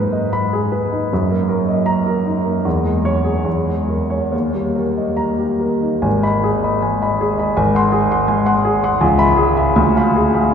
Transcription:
0.00 1.07 G#2 medium
0.00 1.13 G#3 soft
0.00 0.25 B4 soft
0.13 0.44 D#5 soft
0.33 0.64 B5 medium
0.53 0.84 G#4 soft
0.72 1.03 B4 soft
0.92 1.11 D#4 soft
1.13 2.63 F#2 medium
1.31 1.61 A#3 soft
1.49 1.80 A#4 soft
1.68 1.99 D#5 soft
1.86 2.18 A#5 medium
2.06 2.38 A#4 soft
2.26 2.58 D#4 soft
2.45 2.65 A#3 soft
2.65 3.43 E2 medium
2.84 3.17 G#3 soft
3.05 3.37 C#5 medium
3.24 3.45 G#4 soft
3.44 4.29 E2 soft
3.67 4.01 G#3 soft
3.88 4.23 A#4 soft
4.10 4.32 C#5 soft
4.32 6.01 D#2 soft
4.54 4.89 G3 soft
4.75 5.11 A#4 soft
4.98 5.32 D#5 soft
5.17 5.53 A#5 soft
5.39 5.75 G4 soft
5.60 5.96 A#4 soft
5.81 6.04 D#4 soft
6.02 7.53 G#1 medium
6.02 6.35 G#5 soft
6.23 6.42 D#5 soft
6.23 6.42 B5 medium
6.43 6.75 G#4 soft
6.64 6.81 D#5 soft
6.64 6.82 B5 soft
6.82 7.44 G#3 soft
6.82 7.14 G#5 soft
7.02 7.19 D#5 soft
7.02 7.20 B5 soft
7.21 7.51 G#4 soft
7.38 7.56 D#5 soft
7.38 7.56 B5 soft
7.57 8.97 G#1 medium
7.57 7.87 G#5 medium
7.75 7.92 F#5 soft
7.75 7.93 C6 medium
7.92 8.22 G#4 medium
8.11 8.28 F#5 soft
8.11 8.28 C6 medium
8.28 8.86 G#3 medium
8.28 8.58 G#5 medium
8.46 8.63 F#5 medium
8.46 8.63 C6 medium
8.65 8.95 G#4 medium
8.84 9.01 F#5 medium
8.84 9.01 C6 medium
9.01 9.75 C#2 medium
9.01 9.32 G#5 medium
9.18 9.36 E5 medium
9.18 9.37 B5 medium
9.37 9.69 G#4 medium
9.57 9.75 E5 soft
9.57 9.75 B5 medium
9.76 10.52 D2 medium
9.76 10.07 G#5 medium
9.96 10.14 F5 soft
9.96 10.14 B5 medium
10.16 10.47 G#4 medium
10.35 10.53 F5 soft
10.35 10.53 B5 soft

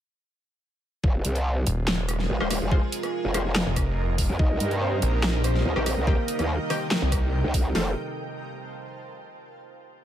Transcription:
1.04 1.23 F1 loud
1.04 7.71 C3 medium
1.04 4.36 F3 medium
1.04 4.36 G#3 medium
1.04 4.36 F4 medium
1.04 4.36 G#4 medium
1.04 7.75 A#4 medium
1.04 kick loud
1.22 1.65 C2 loud
1.22 7.75 D#5 medium
1.22 4.39 G#5 medium
1.22 closed hi-hat medium
1.35 closed hi-hat soft
1.67 2.28 D#1 medium
1.67 closed hi-hat medium
1.88 snare loud
1.88 clap medium
2.09 cross-stick medium
2.09 closed hi-hat medium
2.19 snare soft
2.30 2.39 G#1 loud
2.40 2.60 D#1 medium
2.40 2.58 G#3 medium
2.40 2.58 F4 medium
2.40 2.58 C5 loud
2.40 cross-stick medium
2.50 cross-stick medium
2.50 open hi-hat medium
2.61 2.81 F1 loud
2.71 2.83 G#3 loud
2.71 2.83 F4 medium
2.71 2.83 C5 loud
2.71 kick loud
2.92 closed hi-hat medium
3.03 cross-stick soft
3.03 closed hi-hat soft
3.24 3.65 F1 medium
3.34 3.52 G#3 medium
3.34 3.52 F4 medium
3.34 3.52 C5 medium
3.34 cross-stick medium
3.34 closed hi-hat medium
3.55 snare loud
3.55 clap medium
3.66 4.27 F1 loud
3.76 kick medium
3.76 cross-stick medium
3.76 closed hi-hat medium
4.18 kick medium
4.18 open hi-hat medium
4.29 4.38 F2 medium
4.39 4.59 C2 loud
4.39 7.72 D#3 medium
4.39 7.72 G3 medium
4.39 4.67 D#4 medium
4.39 7.72 D#4 medium
4.39 7.72 G4 medium
4.39 4.67 D#5 medium
4.39 kick loud
4.60 5.01 G2 loud
4.60 closed hi-hat medium
4.71 closed hi-hat soft
4.81 5.36 C4 medium
4.81 5.36 C5 loud
5.02 5.64 A#1 loud
5.02 closed hi-hat medium
5.23 snare loud
5.23 clap medium
5.40 7.75 G5 loud
5.44 5.99 C4 medium
5.44 5.99 C5 medium
5.44 cross-stick medium
5.44 closed hi-hat medium
5.55 snare soft
5.65 5.74 D#2 loud
5.76 5.95 A#1 medium
5.76 5.94 D#3 medium
5.76 5.94 C4 medium
5.76 5.94 G4 loud
5.76 cross-stick medium
5.86 cross-stick medium
5.86 open hi-hat medium
5.97 6.16 C2 medium
6.07 6.19 D#3 loud
6.07 7.67 A#3 medium
6.07 6.19 C4 medium
6.07 6.19 G4 loud
6.07 7.67 A#4 medium
6.07 kick loud
6.28 closed hi-hat medium
6.39 6.58 D#2 medium
6.39 cross-stick medium
6.39 closed hi-hat soft
6.70 6.88 D#3 medium
6.70 6.88 C4 medium
6.70 6.88 G4 medium
6.70 cross-stick medium
6.70 open hi-hat medium
6.91 snare loud
6.91 clap medium
7.02 7.42 C2 loud
7.12 kick medium
7.12 cross-stick medium
7.12 closed hi-hat medium
7.44 7.73 C#2 medium
7.54 kick medium
7.54 open hi-hat medium
7.75 7.95 F1 loud
7.75 7.91 A3 medium
7.75 7.91 C4 medium
7.75 7.91 F4 loud
7.75 7.91 A4 medium
7.75 9.39 C5 medium
7.75 snare loud
7.75 open hi-hat medium
7.82 9.39 F5 medium
7.88 9.39 A5 medium

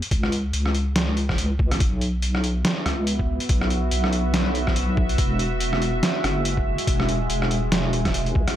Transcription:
0.02 closed hi-hat medium
0.11 0.52 C#2 loud
0.11 kick loud
0.11 closed hi-hat medium
0.23 cross-stick medium
0.32 closed hi-hat medium
0.53 1.37 C#2 medium
0.53 closed hi-hat medium
0.66 cross-stick soft
0.75 closed hi-hat medium
0.96 snare loud
0.96 closed hi-hat medium
1.17 closed hi-hat soft
1.29 kick medium
1.29 cross-stick soft
1.29 snare soft
1.38 1.73 C#2 loud
1.38 closed hi-hat medium
1.59 kick loud
1.71 1.80 B1 medium
1.71 cross-stick medium
1.71 closed hi-hat medium
1.80 2.64 B1 medium
1.80 5.15 B3 medium
1.80 8.52 F#4 medium
1.80 8.52 E5 loud
1.80 kick loud
1.80 closed hi-hat medium
2.01 closed hi-hat soft
2.22 closed hi-hat medium
2.35 cross-stick soft
2.44 closed hi-hat medium
2.65 snare loud
2.65 closed hi-hat medium
2.86 3.39 C#2 medium
2.86 cross-stick medium
2.86 closed hi-hat soft
3.07 closed hi-hat medium
3.19 kick medium
3.40 closed hi-hat medium
3.49 3.90 B1 loud
3.49 kick loud
3.49 closed hi-hat medium
3.61 cross-stick medium
3.70 closed hi-hat medium
3.91 5.17 B1 medium
3.91 closed hi-hat medium
4.04 cross-stick medium
4.13 closed hi-hat medium
4.34 snare loud
4.34 closed hi-hat medium
4.55 closed hi-hat soft
4.67 kick medium
4.67 cross-stick medium
4.67 snare soft
4.76 closed hi-hat medium
4.97 kick loud
5.09 closed hi-hat medium
5.18 6.02 E1 loud
5.18 8.53 G#3 medium
5.18 kick loud
5.18 closed hi-hat medium
5.39 closed hi-hat medium
5.60 closed hi-hat medium
5.73 cross-stick medium
5.82 closed hi-hat medium
6.03 snare loud
6.03 closed hi-hat medium
6.24 6.77 F#1 medium
6.24 cross-stick medium
6.24 closed hi-hat medium
6.45 closed hi-hat medium
6.57 kick medium
6.78 closed hi-hat medium
6.87 7.29 E1 medium
6.87 kick loud
6.87 closed hi-hat medium
7.00 cross-stick medium
7.09 closed hi-hat medium
7.30 8.35 E1 medium
7.30 closed hi-hat medium
7.42 cross-stick medium
7.51 closed hi-hat medium
7.72 snare loud
7.72 closed hi-hat medium
7.93 closed hi-hat medium
8.05 kick medium
8.05 cross-stick medium
8.05 snare soft
8.05 closed hi-hat soft
8.14 closed hi-hat medium
8.26 closed hi-hat soft
8.35 8.47 C#2 medium
8.35 kick loud
8.48 cross-stick medium
8.48 closed hi-hat medium

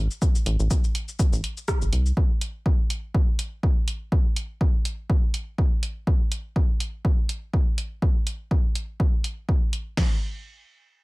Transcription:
0.11 shaker soft
0.22 kick loud
0.22 shaker medium
0.35 shaker soft
0.46 0.57 A1 loud
0.46 closed hi-hat loud
0.60 0.68 A1 medium
0.60 shaker soft
0.71 kick loud
0.71 shaker medium
0.84 shaker soft
0.95 closed hi-hat medium
1.08 shaker soft
1.19 kick loud
1.19 shaker medium
1.33 1.41 A1 loud
1.33 shaker soft
1.44 closed hi-hat medium
1.57 shaker soft
1.68 kick loud
1.68 cross-stick loud
1.68 shaker medium
1.82 1.90 G1 medium
1.82 shaker soft
1.93 2.12 C2 medium
1.93 closed hi-hat medium
2.06 shaker soft
2.17 kick loud
2.41 closed hi-hat medium
2.66 kick loud
2.90 closed hi-hat medium
3.14 kick loud
3.39 closed hi-hat medium
3.63 kick loud
3.88 closed hi-hat medium
4.12 kick loud
4.36 closed hi-hat medium
4.61 kick loud
4.85 closed hi-hat medium
5.10 kick loud
5.34 closed hi-hat medium
5.58 kick medium
5.83 closed hi-hat medium
6.07 kick loud
6.32 closed hi-hat medium
6.56 kick medium
6.80 closed hi-hat medium
7.05 kick loud
7.29 closed hi-hat medium
7.53 kick medium
7.78 closed hi-hat medium
8.02 kick loud
8.27 closed hi-hat medium
8.51 kick loud
8.75 closed hi-hat medium
9.00 kick loud
9.24 closed hi-hat medium
9.49 kick medium
9.73 closed hi-hat medium
9.97 kick loud
9.97 snare loud
9.97 crash medium

